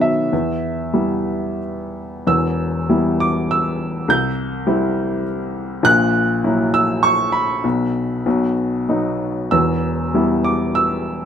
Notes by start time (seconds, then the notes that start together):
Already playing: B2 D#3 F#3 B3 F#5
0.01 E5
0.33 E2
0.94 G3 B3 E4
2.27 E1 E2 E6
2.89 G3 B3 E4
3.20 D6
3.51 E6
4.08 C2 G6
4.67 G3 C4 E4
5.83 A#1 A#2 F#6
6.44 F#3 A#3 E4
6.74 E6
7.03 C#6
7.32 B5
7.64 B1 B2
8.26 B1 B2
8.89 F#3 B3 D#4
9.51 E1 E2 E6
10.14 G3 B3 E4
10.44 D6
10.75 E6